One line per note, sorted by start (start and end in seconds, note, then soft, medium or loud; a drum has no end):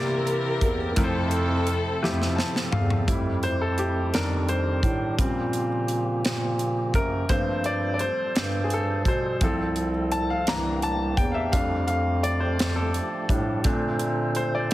0.00 0.58 C3 loud
0.00 0.99 C3 medium
0.00 0.94 E3 medium
0.00 0.94 A#3 medium
0.00 0.99 A#3 medium
0.00 0.94 C4 medium
0.00 0.94 E4 medium
0.00 0.96 E4 medium
0.00 0.94 G4 medium
0.00 0.99 G4 medium
0.00 0.99 A#4 loud
0.00 0.99 C5 medium
0.00 0.77 D5 medium
0.27 closed hi-hat soft
0.61 0.94 E2 medium
0.61 kick medium
0.61 closed hi-hat soft
0.96 1.98 F2 medium
0.96 3.04 C3 medium
0.96 1.82 F3 medium
0.96 1.81 A3 medium
0.96 3.05 A3 medium
0.96 3.05 C4 soft
0.96 2.35 C4 medium
0.96 1.81 E4 medium
0.96 2.35 E4 medium
0.96 3.05 A4 medium
0.96 1.04 A#4 medium
0.96 kick loud
0.96 closed hi-hat loud
1.00 2.39 A4 medium
1.00 1.85 C5 medium
1.31 closed hi-hat soft
1.67 closed hi-hat soft
2.02 2.43 F2 medium
2.02 2.87 F3 medium
2.02 2.87 A3 medium
2.02 2.88 E4 medium
2.02 2.88 G4 medium
2.02 snare soft
2.22 snare soft
2.36 2.69 A5 medium
2.36 snare medium
2.56 snare medium
2.72 3.05 E2 medium
2.72 3.05 F5 medium
2.72 floor tom medium
2.90 floor tom medium
3.06 4.09 F2 medium
3.06 4.14 F3 medium
3.06 4.09 G3 soft
3.06 4.09 A3 soft
3.06 4.14 A3 medium
3.06 4.13 E4 medium
3.06 4.09 E4 medium
3.06 4.13 G4 medium
3.06 kick loud
3.06 closed hi-hat medium
3.43 3.61 C5 medium
3.43 closed hi-hat soft
3.61 3.79 A4 medium
3.78 4.15 G4 medium
3.78 closed hi-hat soft
4.13 4.80 F2 medium
4.13 5.19 D#3 medium
4.13 5.15 D#3 soft
4.13 5.19 G3 soft
4.13 5.15 G3 soft
4.13 5.19 D4 soft
4.13 5.16 D4 medium
4.13 4.20 F4 soft
4.13 5.15 A4 soft
4.13 4.50 A#4 medium
4.13 snare medium
4.13 closed hi-hat medium
4.19 5.17 G4 medium
4.49 6.21 C5 medium
4.49 closed hi-hat soft
4.83 5.16 A2 medium
4.83 kick medium
4.83 closed hi-hat soft
5.18 6.21 A#2 medium
5.18 7.26 C#3 soft
5.18 5.66 C#3 soft
5.18 7.26 F3 medium
5.18 5.66 G3 soft
5.18 7.26 A#3 soft
5.18 5.67 C4 medium
5.18 7.26 G4 medium
5.18 kick loud
5.18 closed hi-hat medium
5.53 closed hi-hat soft
5.88 closed hi-hat soft
6.25 6.91 A#2 medium
6.25 snare loud
6.25 closed hi-hat medium
6.59 closed hi-hat soft
6.94 7.27 F#2 medium
6.94 7.31 A#4 medium
6.94 kick medium
6.94 closed hi-hat soft
7.29 8.05 G2 medium
7.29 8.32 F3 soft
7.29 9.37 F3 medium
7.29 7.36 A3 soft
7.29 8.32 A3 soft
7.29 8.32 A#3 soft
7.29 8.32 C4 soft
7.29 9.37 A4 medium
7.29 9.37 C5 medium
7.29 7.66 C5 medium
7.29 kick loud
7.29 closed hi-hat medium
7.35 9.40 G3 soft
7.64 7.92 D5 medium
7.64 closed hi-hat soft
7.94 8.01 D5 medium
7.99 8.60 C5 medium
7.99 closed hi-hat soft
8.36 9.03 G2 medium
8.36 snare loud
8.36 closed hi-hat medium
8.64 8.71 G#4 medium
8.70 9.09 A4 medium
8.70 closed hi-hat soft
9.05 9.38 B2 medium
9.05 9.44 C5 medium
9.05 kick medium
9.05 closed hi-hat soft
9.41 10.43 C2 medium
9.41 9.89 F3 soft
9.41 10.48 F3 medium
9.41 10.47 A3 soft
9.41 9.89 A3 soft
9.41 10.46 C4 medium
9.41 9.89 C4 medium
9.41 9.48 G#4 medium
9.41 9.76 A4 medium
9.41 kick loud
9.41 closed hi-hat medium
9.48 10.51 A4 medium
9.76 closed hi-hat soft
10.12 10.17 A5 medium
10.12 closed hi-hat soft
10.30 10.48 F5 medium
10.47 11.14 C2 medium
10.47 11.50 E3 soft
10.47 11.54 E3 medium
10.47 11.54 A#3 soft
10.47 11.50 A#3 soft
10.47 11.53 C4 soft
10.47 11.50 D4 medium
10.47 11.53 G4 medium
10.47 10.84 A#5 medium
10.47 snare loud
10.47 closed hi-hat medium
10.82 11.19 A5 medium
10.82 closed hi-hat soft
11.17 11.50 E2 medium
11.17 11.31 G5 medium
11.17 kick medium
11.17 closed hi-hat soft
11.32 11.53 E5 medium
11.32 11.36 F5 medium
11.52 12.55 F2 medium
11.52 13.61 F3 medium
11.52 12.55 G3 soft
11.52 13.61 A3 medium
11.52 12.55 A3 soft
11.52 13.61 D4 medium
11.52 12.55 D4 medium
11.52 11.59 F#4 medium
11.52 11.86 F5 medium
11.52 kick loud
11.52 closed hi-hat loud
11.59 13.64 G4 medium
11.87 12.24 F5 medium
11.87 closed hi-hat soft
12.23 12.42 D5 medium
12.23 closed hi-hat medium
12.40 12.77 C5 medium
12.59 12.99 F2 medium
12.59 snare loud
12.59 closed hi-hat medium
12.76 13.78 A4 medium
12.94 closed hi-hat medium
13.29 13.62 A2 medium
13.29 13.61 G3 soft
13.29 13.62 A3 soft
13.29 13.62 D4 soft
13.29 kick medium
13.29 closed hi-hat soft
13.64 14.67 A#2 medium
13.64 14.74 D3 medium
13.64 14.67 A3 soft
13.64 14.74 A3 medium
13.64 14.67 C4 soft
13.64 14.68 D4 medium
13.64 14.74 A4 medium
13.64 14.74 C5 medium
13.64 kick loud
13.64 closed hi-hat medium
13.99 closed hi-hat soft
14.35 14.54 C5 medium
14.35 closed hi-hat medium
14.55 14.60 D5 medium